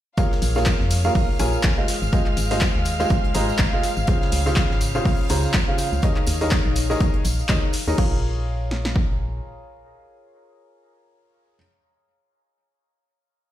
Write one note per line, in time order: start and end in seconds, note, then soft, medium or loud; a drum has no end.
0.17 0.53 A#3 medium
0.17 0.53 F4 medium
0.17 0.53 G#4 medium
0.17 0.53 A#4 medium
0.17 0.53 C#5 medium
0.17 7.99 F5 medium
0.17 0.53 F5 medium
0.17 7.99 F6 medium
0.17 kick loud
0.17 closed hi-hat medium
0.17 tambourine soft
0.32 snare medium
0.42 0.74 A#1 loud
0.42 snare soft
0.42 closed hi-hat medium
0.42 open hi-hat loud
0.42 tambourine medium
0.55 1.01 A#3 medium
0.55 1.01 F4 medium
0.55 1.01 G#4 medium
0.55 1.01 A#4 medium
0.55 1.01 C#5 medium
0.55 1.01 F5 medium
0.55 snare soft
0.55 tambourine soft
0.66 kick loud
0.66 snare loud
0.66 clap loud
0.66 closed hi-hat medium
0.66 tambourine soft
0.80 1.10 F2 medium
0.80 snare soft
0.91 closed hi-hat medium
0.91 open hi-hat loud
0.91 tambourine loud
1.04 1.37 A#3 medium
1.04 1.37 F4 medium
1.04 1.37 G#4 medium
1.04 1.37 A#4 medium
1.04 1.37 C#5 medium
1.04 1.37 F5 loud
1.04 tambourine soft
1.15 1.25 A#1 medium
1.15 kick loud
1.15 open hi-hat medium
1.15 tambourine soft
1.39 1.58 A#1 loud
1.39 1.74 A#3 medium
1.39 1.74 F4 medium
1.39 1.74 G#4 medium
1.39 1.74 A#4 medium
1.39 1.74 C#5 medium
1.39 1.74 G#5 loud
1.39 closed hi-hat medium
1.39 open hi-hat loud
1.39 tambourine medium
1.53 tambourine soft
1.63 1.74 A#1 loud
1.63 kick loud
1.63 snare loud
1.63 clap loud
1.63 closed hi-hat medium
1.63 tambourine soft
1.78 2.10 G#3 medium
1.78 2.10 F4 medium
1.78 2.10 G#4 medium
1.78 2.10 C5 medium
1.78 2.10 D#5 medium
1.78 2.10 F5 medium
1.88 snare medium
1.88 closed hi-hat medium
1.88 open hi-hat loud
1.88 tambourine medium
2.02 2.10 G#1 medium
2.02 tambourine medium
2.13 2.48 G#3 medium
2.13 2.48 F4 medium
2.13 2.48 G#4 medium
2.13 2.48 C5 medium
2.13 2.48 D#5 medium
2.13 2.48 F5 medium
2.13 kick loud
2.13 closed hi-hat medium
2.13 tambourine soft
2.26 clap soft
2.37 2.69 G#1 loud
2.37 closed hi-hat medium
2.37 open hi-hat loud
2.37 tambourine medium
2.51 2.96 G#3 medium
2.51 2.96 F4 medium
2.51 2.96 G#4 medium
2.51 2.96 C5 medium
2.51 2.96 D#5 medium
2.51 2.96 F5 loud
2.51 open hi-hat medium
2.51 tambourine soft
2.61 kick loud
2.61 snare loud
2.61 clap loud
2.61 closed hi-hat medium
2.61 tambourine soft
2.75 3.05 D#2 medium
2.85 closed hi-hat medium
2.85 open hi-hat loud
2.85 tambourine medium
2.99 3.32 G#3 loud
2.99 3.32 F4 medium
2.99 3.32 G#4 medium
2.99 3.32 C5 medium
2.99 3.32 D#5 medium
2.99 3.32 F5 loud
2.99 snare soft
2.99 tambourine medium
3.10 3.20 G#1 medium
3.10 kick loud
3.10 closed hi-hat medium
3.10 tambourine soft
3.25 closed hi-hat soft
3.34 3.53 G#1 loud
3.34 3.70 G#3 loud
3.34 3.70 F4 medium
3.34 3.70 G#4 medium
3.34 3.70 C5 medium
3.34 3.70 D#5 medium
3.34 3.70 A#5 loud
3.34 closed hi-hat medium
3.34 open hi-hat loud
3.34 tambourine medium
3.49 tambourine soft
3.58 3.69 G#1 loud
3.58 kick loud
3.58 snare loud
3.58 clap loud
3.58 closed hi-hat medium
3.58 tambourine soft
3.73 4.05 G#3 medium
3.73 4.05 F4 medium
3.73 4.05 G#4 medium
3.73 4.05 C5 medium
3.73 4.05 D#5 medium
3.73 4.05 F5 medium
3.83 snare soft
3.83 closed hi-hat medium
3.83 open hi-hat loud
3.83 tambourine medium
3.97 4.05 G#1 medium
3.97 tambourine medium
4.07 4.43 C#3 medium
4.07 4.43 F4 medium
4.07 4.43 G#4 medium
4.07 4.43 C5 medium
4.07 4.43 C#5 medium
4.07 4.43 F5 medium
4.07 kick loud
4.07 closed hi-hat medium
4.07 tambourine soft
4.22 snare medium
4.32 4.64 C#2 loud
4.32 snare soft
4.32 closed hi-hat medium
4.32 open hi-hat loud
4.32 tambourine loud
4.46 4.92 C#3 medium
4.46 4.92 F4 medium
4.46 4.92 G#4 medium
4.46 4.92 C5 medium
4.46 4.92 C#5 medium
4.46 4.92 F5 loud
4.46 snare soft
4.46 tambourine medium
4.56 kick loud
4.56 snare loud
4.56 clap loud
4.56 closed hi-hat medium
4.56 tambourine soft
4.70 5.00 G#1 medium
4.70 snare soft
4.81 closed hi-hat medium
4.81 open hi-hat loud
4.81 tambourine loud
4.95 5.27 C#3 loud
4.95 5.27 F4 medium
4.95 5.27 G#4 medium
4.95 5.27 C5 medium
4.95 5.27 C#5 medium
4.95 5.27 F5 loud
4.95 tambourine medium
5.05 5.15 C#2 medium
5.05 kick loud
5.05 open hi-hat medium
5.05 tambourine soft
5.29 5.48 C#2 loud
5.29 5.65 C#3 loud
5.29 5.65 F4 medium
5.29 5.65 G#4 medium
5.29 5.65 C5 medium
5.29 5.65 C#5 medium
5.29 5.65 A#5 loud
5.29 closed hi-hat medium
5.29 open hi-hat loud
5.29 tambourine medium
5.43 tambourine medium
5.54 5.64 C#2 loud
5.54 kick loud
5.54 snare loud
5.54 clap loud
5.54 closed hi-hat medium
5.54 tambourine soft
5.68 6.00 C#3 medium
5.68 6.00 F4 medium
5.68 6.00 G#4 medium
5.68 6.00 C5 medium
5.68 6.00 C#5 medium
5.68 6.00 F5 medium
5.78 closed hi-hat medium
5.78 open hi-hat loud
5.78 tambourine medium
5.92 6.00 C#2 medium
5.92 tambourine soft
6.02 6.38 D#3 medium
6.02 6.38 D#4 medium
6.02 6.38 G#4 medium
6.02 6.38 A#4 medium
6.02 6.38 C#5 medium
6.02 6.38 D#5 medium
6.02 kick loud
6.02 closed hi-hat medium
6.02 tambourine soft
6.16 clap soft
6.27 6.59 D#2 loud
6.27 closed hi-hat medium
6.27 open hi-hat loud
6.27 tambourine loud
6.41 6.87 D#3 loud
6.41 6.87 D#4 medium
6.41 6.87 G#4 medium
6.41 6.87 A#4 medium
6.41 6.87 C#5 medium
6.41 6.87 D#5 loud
6.41 open hi-hat medium
6.41 tambourine soft
6.51 kick loud
6.51 snare loud
6.51 clap loud
6.51 closed hi-hat medium
6.51 tambourine soft
6.66 6.95 A#1 medium
6.76 closed hi-hat medium
6.76 open hi-hat loud
6.76 tambourine medium
6.90 7.22 D#3 loud
6.90 7.22 D#4 medium
6.90 7.22 G#4 medium
6.90 7.22 A#4 medium
6.90 7.22 C#5 medium
6.90 7.22 D#5 loud
6.90 snare soft
6.90 tambourine medium
7.00 7.10 D#2 medium
7.00 kick loud
7.00 closed hi-hat medium
7.00 tambourine soft
7.14 closed hi-hat soft
7.25 7.43 A#1 loud
7.25 closed hi-hat medium
7.25 open hi-hat loud
7.25 tambourine loud
7.39 tambourine medium
7.49 7.59 D#2 medium
7.49 7.70 D#3 medium
7.49 7.70 D#4 medium
7.49 7.70 G#4 medium
7.49 7.70 A#4 medium
7.49 7.70 C#5 medium
7.49 7.70 D#5 medium
7.49 kick loud
7.49 snare loud
7.49 clap loud
7.49 closed hi-hat medium
7.49 tambourine soft
7.73 open hi-hat medium
7.73 open hi-hat loud
7.73 tambourine medium
7.88 7.95 D#2 loud
7.88 7.96 D#4 medium
7.88 7.96 G#4 medium
7.88 7.96 A#4 medium
7.88 7.96 C#5 medium
7.88 7.96 D#5 medium
7.88 tambourine medium
7.98 9.40 A#1 loud
7.98 11.55 F4 medium
7.98 11.55 G#4 medium
7.98 11.55 A#4 medium
7.98 11.55 C#5 medium
7.98 11.55 F5 medium
7.98 kick loud
7.98 crash medium
8.71 snare medium
8.85 snare medium
8.96 kick medium